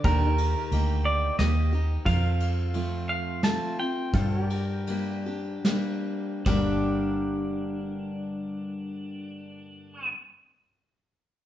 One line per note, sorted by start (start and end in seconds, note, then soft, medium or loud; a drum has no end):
0.04 0.54 D#2 medium
0.04 1.33 D#3 medium
0.04 0.27 D4 medium
0.04 2.05 G4 medium
0.04 1.09 A#4 medium
0.04 2.05 A#4 medium
0.04 kick medium
0.04 ride medium
0.27 2.05 D#4 medium
0.38 ride medium
0.72 1.29 D2 medium
0.72 1.36 A#3 medium
0.72 1.37 D#4 medium
0.72 1.37 G4 medium
0.72 ride medium
1.05 1.38 D5 medium
1.39 1.96 D#2 medium
1.39 1.71 D#3 medium
1.39 1.72 A#3 medium
1.39 1.72 D#4 medium
1.39 1.71 G4 medium
1.39 2.02 D#5 medium
1.39 snare medium
1.39 ride medium
1.73 2.06 D#4 soft
1.73 2.05 G4 medium
2.05 3.58 F2 medium
2.05 3.36 F2 medium
2.05 4.11 F4 medium
2.05 2.27 A#4 medium
2.05 4.13 C5 medium
2.05 2.70 F5 medium
2.05 kick medium
2.05 ride medium
2.27 4.12 A4 medium
2.40 ride medium
2.74 3.39 F3 medium
2.74 3.40 A3 medium
2.74 3.40 C4 medium
2.74 3.41 F4 medium
2.74 ride medium
3.09 3.44 F5 medium
3.43 3.77 F3 medium
3.43 3.77 A3 medium
3.43 3.78 C4 medium
3.43 3.77 F4 medium
3.43 3.79 A5 medium
3.43 snare medium
3.43 ride medium
3.79 4.14 C4 soft
3.79 4.13 F4 medium
3.79 5.61 G5 medium
4.14 5.83 G2 medium
4.14 5.57 G2 medium
4.14 4.31 F4 medium
4.14 4.38 A4 medium
4.14 4.33 C5 medium
4.14 kick medium
4.14 ride medium
4.31 4.43 F#4 medium
4.31 4.45 C#5 medium
4.38 6.45 A#4 medium
4.43 6.44 G4 medium
4.43 6.45 D5 medium
4.50 ride medium
4.87 5.24 G3 medium
4.87 5.25 A#3 soft
4.87 5.25 D4 soft
4.87 5.25 G4 medium
4.87 ride medium
5.26 5.64 D4 soft
5.26 5.64 G4 medium
5.65 6.42 G3 medium
5.65 6.43 A#3 medium
5.65 6.43 D4 medium
5.65 6.43 G4 medium
5.65 snare medium
5.65 ride medium
6.46 10.07 G1 medium
6.46 10.11 G2 medium
6.46 10.12 D3 medium
6.46 10.13 G3 medium
6.46 10.13 A#3 medium
6.46 10.14 D4 medium
6.46 10.09 G4 medium
6.46 10.15 G4 medium
6.46 10.10 A#4 medium
6.46 10.11 D5 medium
6.46 kick medium
6.46 floor tom medium
6.46 crash medium